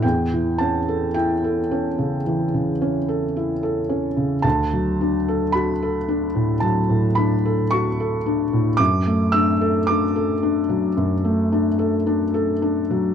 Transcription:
\new Staff \with { instrumentName = "Felt piano" } { \time 4/4 \key d \major \tempo 4 = 55 << { g''8 a''8 g''2. | a''4 b''4 a''8 b''8 cis'''4 | d'''8 e'''8 d'''2. | } \\ { e,16 e16 cis'16 a'16 e'16 a'16 cis'16 cis16 e16 cis16 cis'16 a'16 e'16 a'16 cis'16 cis16 | d,16 fis16 d'16 a'16 fis'16 a'16 d'16 a,16 fis16 a,16 d'16 a'16 fis'16 a'16 d'16 a,16 | fis,16 a16 d'16 a'16 d'16 a'16 d'16 fis16 fis,16 a16 d'16 a'16 d'16 a'16 d'16 fis16 | } >> }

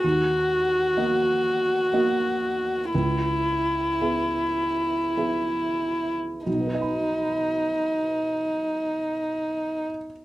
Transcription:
<<
  \new Staff \with { instrumentName = "Felt piano" } { \time 3/4 \key b \major \tempo 4 = 52 dis,4 <ais fis' dis''>4 <ais fis' dis''>4 | cis,4 <b gis' e''>4 <b gis' e''>4 | <b,, b, b b' dis'' b''>2. | }
  \new Staff \with { instrumentName = "Violin" } { \time 3/4 \key b \major fis'2. | e'2. | dis'2. | }
>>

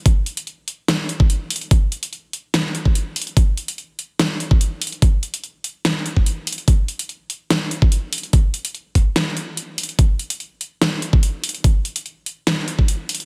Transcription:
\new DrumStaff \with { instrumentName = "Drums" } \drummode { \time 4/4 \tempo 4 = 145 <hh bd>8 hh16 hh16 hh8 hh8 <hh sn>8 hh16 bd16 hh8 hho32 hh32 hh16 | <hh bd>8 hh16 hh16 hh8 hh8 <hh sn>8 hh16 bd16 hh8 hho32 hh32 hh16 | <hh bd>8 hh16 hh16 hh8 hh8 <hh sn>8 hh16 bd16 hh8 hho32 hh32 hh16 | <hh bd>8 hh16 hh16 hh8 hh8 <hh sn>8 hh16 bd16 hh8 hho32 hh32 hh16 |
<hh bd>8 hh16 hh16 hh8 hh8 <hh sn>8 hh16 bd16 hh8 hho32 hh32 hh16 | <hh bd>8 hh16 hh16 hh8 <hh bd>8 <hh sn>8 hh8 hh8 hho32 hh32 hh16 | <hh bd>8 hh16 hh16 hh8 hh8 <hh sn>8 hh16 bd16 hh8 hho32 hh32 hh16 | <hh bd>8 hh16 hh16 hh8 hh8 <hh sn>8 hh16 bd16 hh8 hho32 hh32 hh16 | }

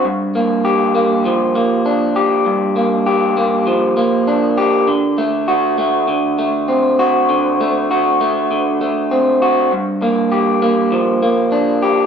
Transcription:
\new Staff \with { instrumentName = "Clean electric guitar" } { \time 4/4 \key g \minor \tempo 4 = 99 g,8 bes8 g'8 bes8 f8 bes8 d'8 g'8 | g,8 bes8 g'8 bes8 f8 bes8 d'8 g'8 | d8 a8 fis'8 a8 d8 a8 c'8 fis'8 | d8 a8 fis'8 a8 d8 a8 c'8 fis'8 |
g,8 bes8 g'8 bes8 f8 bes8 d'8 g'8 | }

